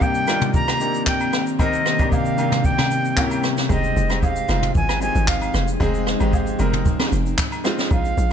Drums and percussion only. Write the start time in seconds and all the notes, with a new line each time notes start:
0.01 kick, low woodblock, shaker
0.15 shaker
0.27 cross-stick, high agogo, shaker
0.42 mid tom, shaker
0.54 kick, shaker
0.68 cross-stick, high agogo, shaker
0.81 shaker
0.94 shaker
1.07 kick, clap, shaker
1.21 high agogo, shaker
1.33 cross-stick, shaker
1.47 shaker
1.59 kick, high agogo, shaker
1.73 shaker
1.86 cross-stick, shaker
1.99 kick, high agogo, shaker
2.12 kick, low woodblock, shaker
2.25 shaker
2.38 high agogo, shaker
2.52 cross-stick, mid tom, shaker
2.64 kick, shaker
2.78 cross-stick, snare, mid tom, high agogo, shaker
2.91 shaker
3.05 shaker
3.17 kick, clap, low woodblock, shaker
3.31 high agogo, shaker
3.44 cross-stick, shaker
3.57 snare, shaker
3.70 kick, high agogo, shaker
3.84 shaker
3.97 shaker
4.10 cross-stick, high agogo, shaker
4.23 kick, low woodblock, shaker
4.36 shaker
4.49 cross-stick, high agogo, shaker
4.63 mid tom, shaker
4.75 kick, shaker
4.89 cross-stick, high agogo, shaker
5.02 shaker
5.15 shaker
5.28 kick, clap, shaker
5.42 high agogo, shaker
5.54 cross-stick, shaker
5.68 shaker
5.80 kick, high agogo, shaker
5.94 shaker
6.07 cross-stick, shaker
6.20 high agogo, shaker
6.33 kick, low woodblock, shaker
6.46 shaker
6.59 high agogo, shaker
6.73 mid tom, shaker
6.85 kick, shaker
7.00 cross-stick, snare, high agogo, shaker
7.12 shaker
7.26 shaker
7.38 kick, clap, shaker
7.52 high agogo, shaker
7.65 cross-stick, shaker
7.78 snare, shaker
7.91 kick, high agogo, shaker
8.05 shaker
8.18 shaker